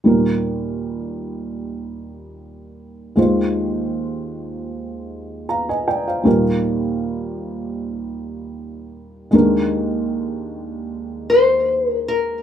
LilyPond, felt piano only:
<<
  \new Staff \with { instrumentName = "Felt piano" } { \time 4/4 \key ees \major \tempo 4 = 77 << { r1 | r2. <f'' bes''>16 <ees'' aes''>16 <d'' g''>16 <c'' f''>16~ | <c'' f''>16 r2. r8. | r1 | } \\ { <g ees' bes'>1 | <aes f' c''>2. r4 | <g ees' bes'>1 | <aes d' bes'>1 | } >> }
  \new Staff \with { instrumentName = "Felt piano" } { \clef bass \time 4/4 \key ees \major <ees, bes,>1 | <ees, ees>1 | <ees, bes,>1 | <ees, ees>1 | }
>>